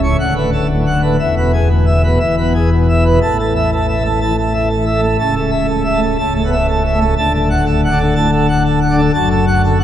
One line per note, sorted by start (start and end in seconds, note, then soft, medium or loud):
0.00 0.15 C#1 medium
0.00 0.15 C#2 medium
0.00 0.17 C#3 medium
0.00 0.16 C#5 medium
0.20 1.17 D1 medium
0.20 1.17 D2 medium
0.20 0.34 F#5 medium
0.36 0.50 A2 medium
0.36 0.50 B4 medium
0.53 0.67 A4 medium
0.69 0.84 A2 medium
0.86 1.01 F#5 medium
1.02 1.17 A2 medium
1.02 1.17 B4 medium
1.20 2.18 E1 medium
1.20 2.17 E2 medium
1.20 1.35 E5 medium
1.37 1.52 B2 soft
1.37 1.52 B4 medium
1.53 1.68 G#4 medium
1.70 1.85 B2 medium
1.87 2.02 E5 medium
2.03 2.19 B2 medium
2.03 2.19 B4 medium
2.19 3.19 E1 medium
2.19 3.18 E2 medium
2.19 2.36 E5 medium
2.37 2.53 B3 medium
2.37 2.53 B4 medium
2.54 2.70 G#4 soft
2.72 2.87 B2 medium
2.89 3.04 E5 medium
3.04 3.19 B2 medium
3.04 3.19 B4 medium
3.22 5.16 A1 medium
3.22 5.16 A2 medium
3.22 3.37 A5 medium
3.39 3.54 A4 medium
3.56 3.70 E5 medium
3.72 3.87 A4 medium
3.88 4.03 E5 medium
3.98 4.08 A3 medium
4.04 4.19 A4 medium
4.21 4.33 E3 medium
4.21 4.36 A5 medium
4.38 4.53 A4 medium
4.54 4.69 E5 medium
4.70 4.85 A4 medium
4.85 5.01 E5 medium
4.94 5.06 A3 medium
5.02 5.17 A4 medium
5.19 6.16 C#1 medium
5.19 6.16 C#2 medium
5.19 5.34 A5 medium
5.35 5.51 A4 medium
5.50 5.66 E5 medium
5.67 5.83 A4 medium
5.85 6.00 E5 medium
5.94 6.05 A3 medium
6.03 6.17 A4 medium
6.18 7.14 C#1 medium
6.18 7.14 C#2 medium
6.18 6.33 A5 medium
6.31 6.42 A3 medium
6.36 6.50 A4 medium
6.45 6.55 B3 medium
6.52 6.67 E5 medium
6.68 6.83 A4 medium
6.85 6.99 E5 medium
6.92 7.04 A3 medium
7.00 7.14 A4 medium
7.17 9.10 D1 medium
7.17 9.10 D2 medium
7.17 7.32 A5 loud
7.34 7.49 A4 medium
7.50 7.65 F#5 medium
7.66 7.81 A4 medium
7.84 7.98 F#5 medium
7.91 8.02 D4 medium
7.99 8.14 A4 medium
8.16 8.27 A2 medium
8.16 8.30 A5 medium
8.32 8.47 A4 medium
8.48 8.63 F#5 medium
8.65 8.80 A4 medium
8.82 8.96 F#5 medium
8.90 9.01 D4 medium
8.98 9.12 A4 medium
9.14 9.84 F#1 medium
9.14 9.84 F#2 medium
9.14 9.29 A5 loud
9.31 9.45 A4 medium
9.47 9.62 F#5 medium
9.64 9.78 A4 medium
9.80 9.84 F#5 medium